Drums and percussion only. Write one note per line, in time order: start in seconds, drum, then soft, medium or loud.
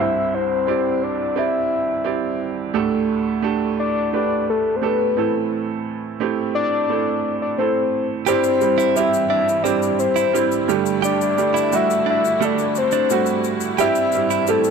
8.27 shaker medium
8.44 shaker soft
8.61 shaker soft
8.79 shaker medium
8.96 shaker medium
9.14 shaker medium
9.49 shaker soft
9.65 shaker soft
9.82 shaker soft
9.99 shaker soft
10.16 shaker medium
10.35 shaker medium
10.52 shaker medium
10.69 shaker soft
10.86 shaker soft
11.04 shaker medium
11.21 shaker soft
11.38 shaker soft
11.56 shaker medium
11.72 shaker medium
11.90 shaker soft
12.25 shaker soft
12.42 shaker medium
12.58 shaker soft
12.75 shaker soft
12.91 shaker soft
13.10 shaker medium
13.26 shaker medium
13.44 shaker soft
13.60 shaker soft
13.79 shaker medium
13.95 shaker soft
14.12 shaker soft
14.30 shaker soft
14.47 shaker medium
14.64 shaker medium